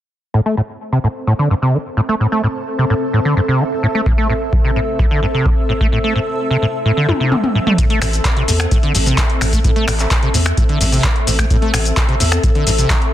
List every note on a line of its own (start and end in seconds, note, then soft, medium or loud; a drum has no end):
0.34 0.41 A2 medium
0.34 13.13 C4 medium
0.46 0.55 A3 medium
0.57 0.61 A2 medium
0.78 13.13 A4 medium
0.92 0.99 C3 medium
1.04 1.08 A2 medium
1.27 1.34 A2 medium
1.39 1.48 D3 medium
1.50 1.54 G2 medium
1.62 1.75 C3 medium
1.74 1.78 E3 medium
1.80 13.13 E5 medium
1.97 2.01 A2 medium
2.09 2.15 A3 medium
2.20 2.27 A2 medium
2.32 2.41 A3 medium
2.43 2.47 A2 medium
2.78 2.85 C3 medium
2.90 2.94 A2 medium
3.13 3.20 A2 medium
3.25 3.35 D3 medium
3.37 3.40 G2 medium
3.48 3.61 C3 medium
3.60 3.64 E3 medium
3.83 3.87 A2 medium
3.95 4.01 A3 medium
4.06 4.13 A2 medium
4.06 kick loud
4.18 4.27 A3 medium
4.30 4.33 A2 medium
4.53 kick loud
4.64 4.71 C3 medium
4.76 4.80 A2 medium
4.99 5.06 A2 medium
4.99 kick loud
5.11 5.21 D3 medium
5.23 5.26 G2 medium
5.34 5.47 C3 medium
5.46 5.50 E3 medium
5.46 kick loud
5.69 5.73 A2 medium
5.81 5.87 A3 medium
5.81 kick medium
5.92 5.99 A2 medium
6.04 6.14 A3 medium
6.16 6.19 A2 medium
6.51 6.57 C3 medium
6.62 6.66 A2 medium
6.85 6.92 A2 medium
6.97 7.07 D3 medium
7.09 7.12 G2 medium
7.09 high tom medium
7.20 7.33 C3 medium
7.32 7.36 E3 medium
7.32 mid tom medium
7.44 mid tom medium
7.55 7.59 A2 medium
7.67 7.73 A3 medium
7.67 mid tom medium
7.78 7.85 A2 medium
7.78 kick loud
7.78 closed hi-hat medium
7.78 shaker soft
7.90 8.00 A3 medium
7.90 closed hi-hat soft
8.02 8.20 A1 loud
8.02 8.05 A2 medium
8.02 finger snap medium
8.02 open hi-hat medium
8.02 shaker medium
8.13 closed hi-hat medium
8.13 shaker soft
8.25 kick loud
8.25 clap loud
8.25 closed hi-hat medium
8.25 shaker soft
8.37 8.43 C3 medium
8.37 closed hi-hat soft
8.48 8.67 E2 medium
8.48 8.52 A2 medium
8.48 open hi-hat loud
8.48 shaker medium
8.60 finger snap medium
8.60 closed hi-hat soft
8.60 shaker soft
8.71 8.78 A2 medium
8.71 kick loud
8.71 closed hi-hat medium
8.71 shaker soft
8.83 8.93 D3 medium
8.83 closed hi-hat soft
8.95 9.13 A1 loud
8.95 8.98 G2 medium
8.95 open hi-hat loud
8.95 shaker medium
9.06 9.19 C3 medium
9.06 closed hi-hat medium
9.06 shaker soft
9.18 9.22 E3 medium
9.18 kick loud
9.18 clap loud
9.18 closed hi-hat medium
9.18 shaker soft
9.30 closed hi-hat soft
9.41 9.60 A1 loud
9.41 9.45 A2 medium
9.41 finger snap medium
9.41 open hi-hat loud
9.41 shaker medium
9.53 9.59 A3 medium
9.53 kick medium
9.53 closed hi-hat medium
9.53 shaker soft
9.64 9.71 A2 medium
9.64 kick loud
9.64 closed hi-hat medium
9.64 shaker soft
9.76 9.86 A3 medium
9.76 closed hi-hat soft
9.88 10.06 A1 loud
9.88 9.91 A2 medium
9.88 finger snap medium
9.88 open hi-hat loud
9.88 shaker medium
9.99 clap soft
9.99 closed hi-hat soft
9.99 shaker soft
10.11 kick loud
10.11 clap loud
10.11 closed hi-hat soft
10.11 shaker soft
10.23 10.29 C3 medium
10.23 closed hi-hat soft
10.34 10.53 E2 medium
10.34 10.38 A2 medium
10.34 open hi-hat loud
10.34 shaker medium
10.46 finger snap medium
10.46 closed hi-hat soft
10.46 shaker soft
10.57 10.64 A2 medium
10.57 kick loud
10.57 closed hi-hat medium
10.57 shaker soft
10.69 10.79 D3 medium
10.69 closed hi-hat soft
10.81 10.99 A1 loud
10.81 10.85 G2 medium
10.81 open hi-hat loud
10.81 shaker medium
10.92 11.05 C3 medium
10.92 open hi-hat medium
10.92 shaker soft
11.04 11.08 E3 medium
11.04 kick loud
11.04 clap loud
11.04 closed hi-hat medium
11.04 shaker soft
11.16 closed hi-hat soft
11.27 11.46 A1 loud
11.27 11.31 A2 medium
11.27 open hi-hat loud
11.27 shaker medium
11.39 11.45 A3 medium
11.39 finger snap medium
11.39 kick medium
11.39 closed hi-hat medium
11.39 shaker soft
11.50 11.57 A2 medium
11.50 kick loud
11.50 closed hi-hat medium
11.50 shaker soft
11.62 11.72 A3 medium
11.62 closed hi-hat soft
11.74 11.92 A1 loud
11.74 11.78 A2 medium
11.74 finger snap medium
11.74 open hi-hat loud
11.74 shaker medium
11.85 closed hi-hat medium
11.85 shaker soft
11.97 kick loud
11.97 clap loud
11.97 closed hi-hat soft
11.97 shaker soft
12.09 12.15 C3 medium
12.09 closed hi-hat soft
12.20 12.39 E2 medium
12.20 12.24 A2 medium
12.20 open hi-hat loud
12.20 shaker medium
12.32 finger snap medium
12.32 shaker soft
12.43 12.50 A2 medium
12.43 kick loud
12.43 closed hi-hat medium
12.43 shaker soft
12.55 12.65 D3 medium
12.55 closed hi-hat soft
12.67 12.85 A1 loud
12.67 12.71 G2 medium
12.67 open hi-hat loud
12.67 shaker medium
12.78 12.92 C3 medium
12.78 closed hi-hat soft
12.78 shaker soft
12.90 12.94 E3 medium
12.90 kick loud
12.90 clap loud
12.90 closed hi-hat soft
12.90 shaker soft
13.02 closed hi-hat soft